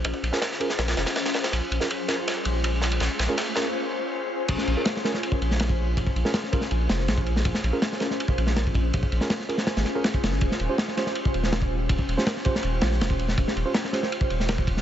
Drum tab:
CC |----------------|----------------|----------------|x---------------|
RD |x-x-x-x-xxxxxxxx|x-x-x-x-x-x-x-xx|x-x-x-x---------|x-x-x-x-x-x-x---|
SD |---ooo-ooooooooo|o--o--o-o-----o-|o-o-o-o---------|-o--oooo---oo---|
BD |oo--------------|----------------|----------------|o--------o---o--|

CC |----------------|----------------|----------------|----------------|
RD |x-x-x-x-x-x-x-x-|x-x-x-x-x-x-x-x-|x-x-x-x-xxx-x-x-|x-x-x-x-x-x-x---|
SD |---ooo-o--ooo--o|-o--oooo---oo---|---ooo-oooo-o-oo|-o--oooo---oo---|
BD |oo----o------o--|o--------o---oo-|oo-----------o--|o--------o---o--|

CC |----------------|----------------|
RD |x-x-x-x-x-x-x-x-|x-x-x-x-x-x-x-x-|
SD |---ooo-o--ooo--o|-o--oooo---oo--o|
BD |oo----o------o--|o--------o---oo-|